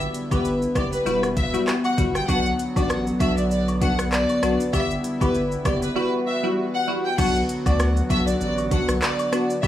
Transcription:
Already playing: analog synth pad D3 G3 B3 E4
0.01 shaker
0.14 closed hi-hat, cabasa, shaker
0.31 sub bass G1, synth stab B3 E4 G4, violin section B4, kick, high woodblock, shaker
0.45 shaker
0.62 shaker
0.75 sub bass F#1, synth stab B3 E4 G4, violin section D5, kick, cross-stick, closed hi-hat, cabasa, high woodblock, shaker
0.93 violin section B4, shaker
1.06 sub bass E1, analog synth pad E3 F#4, synth stab G3 E4 F#4, violin section B4, shaker
1.23 cross-stick, high woodblock, shaker
1.37 violin section E5, kick, closed hi-hat, cabasa, shaker
1.54 synth stab G3 E4 F#4, shaker
1.68 cross-stick, clap, shaker
1.84 violin section F#5, high woodblock, shaker
1.98 sub bass G1, synth stab G3 E4 F#4, kick, closed hi-hat, cabasa, shaker
2.15 violin section G5, cross-stick, shaker
2.28 sub bass B1, analog synth pad D3 F#3, synth stab B3 D4 F#4, violin section F#5, kick, high woodblock, shaker
2.46 shaker
2.59 closed hi-hat, cabasa, shaker
2.76 sub bass A1, synth stab B3 D4 F#4, violin section D5, kick, high woodblock, shaker
2.90 cross-stick, shaker
3.07 shaker
3.20 sub bass B1, synth stab B3 D4 F#4, violin section E5, kick, closed hi-hat, cabasa, high woodblock, shaker
3.38 violin section D5, shaker
3.51 violin section D5, shaker
3.68 high woodblock, shaker
3.81 synth stab B3 D4 F#4, violin section F#5, kick, closed hi-hat, cabasa, shaker
3.99 cross-stick, shaker
4.12 violin section D5, cross-stick, clap, shaker
4.29 high woodblock, shaker
4.43 sub bass B1, synth stab B3 D4 F#4, cross-stick, closed hi-hat, cabasa, shaker
4.60 shaker
4.73 sub bass G1, analog synth pad G3 E4, synth stab B3 E4 G4, violin section E5, kick, high woodblock, shaker
4.91 shaker
5.04 closed hi-hat, cabasa, shaker
5.21 sub bass G1, synth stab B3 E4 G4, violin section B4, kick, high woodblock, shaker
5.34 shaker
5.52 shaker
5.65 sub bass F#1, synth stab B3 E4 G4, violin section D5, kick, cross-stick, closed hi-hat, cabasa, high woodblock, shaker
5.82 violin section B4, shaker
5.96 analog synth pad E3 G3 F#4, synth stab G3 E4 F#4, violin section B4
6.27 violin section E5
6.43 synth stab G3 E4 F#4
6.74 violin section F#5
6.87 synth stab G3 E4 F#4
7.05 violin section G5
7.18 sub bass B1, analog synth pad D3 F#3 B3 F#4, synth stab B3 D4 F#4, violin section F#5, kick, crash, high woodblock, shaker
7.36 shaker
7.49 closed hi-hat, cabasa, shaker
7.66 sub bass D2, synth stab B3 D4 F#4, violin section D5, kick, high woodblock, shaker
7.79 cross-stick, shaker
7.97 shaker
8.10 sub bass B1, synth stab B3 D4 F#4, violin section E5, kick, closed hi-hat, cabasa, high woodblock, shaker
8.27 violin section D5, shaker
8.41 sub bass A1, violin section D5, shaker
8.58 high woodblock, shaker
8.71 synth stab B3 D4 F#4, violin section F#5, kick, closed hi-hat, cabasa, shaker
8.89 sub bass B1, cross-stick, shaker
9.02 violin section D5, cross-stick, clap, shaker
9.19 high woodblock, shaker
9.32 synth stab B3 D4 F#4, cross-stick, closed hi-hat, cabasa, shaker
9.50 shaker
9.63 sub bass G1, analog synth pad G3 E4, synth stab B3 E4 G4, violin section E5, kick, high woodblock, shaker

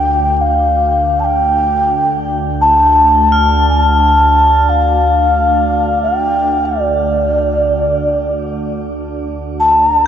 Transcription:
Already playing: synth drone D2, xiao G5, crotales D6
0.37 xiao G5
0.41 xiao F5
1.20 xiao A5
1.24 xiao G5
2.61 xiao A5
3.32 crotales F6
3.69 xiao A5
4.69 xiao F5
6.03 xiao G5
6.65 xiao D5
9.60 xiao A5

